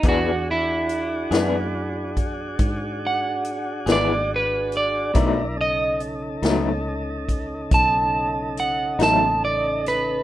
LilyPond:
<<
  \new Staff \with { instrumentName = "Clean electric guitar" } { \time 12/8 \key e \major \tempo 4. = 47 fis'8 e'2 r4 fis''4 d''8 b'8 d''8~ | d''8 dis''8 r2 a''4 fis''8 a''8 d''8 b'8 | }
  \new Staff \with { instrumentName = "Tonewheel organ" } { \time 12/8 \key e \major <d' fis' gis'>1. | <d' e' ais'>8 <cis dis' a'>1~ <cis dis' a'>4. | }
  \new Staff \with { instrumentName = "Clean electric guitar" } { \time 12/8 \key e \major <e b d' gis'>8 r4 <e b d' gis'>8 r2 r8 <e b d' gis'>8 r4 | <b, fis a dis'>8 r4 <b, fis a dis'>8 r2 r8 <b, fis a dis'>8 r4 | }
  \new Staff \with { instrumentName = "Fingered electric bass" } { \clef bass \time 12/8 \key e \major e,4. fis,4. gis,4. gis,,4. | b,,4. cis,4. b,,4. a,,4. | }
  \new DrumStaff \with { instrumentName = "Drums" } \drummode { \time 12/8 <hh bd>4 hh8 <hh sn>4 <hh bd>8 <hh bd>4 hh8 <hh sn>4 hh8 | <hh bd>4 hh8 <hh sn>4 <hh bd>8 <hh bd>4 hh8 <hh sn>4 <hh sn>8 | }
>>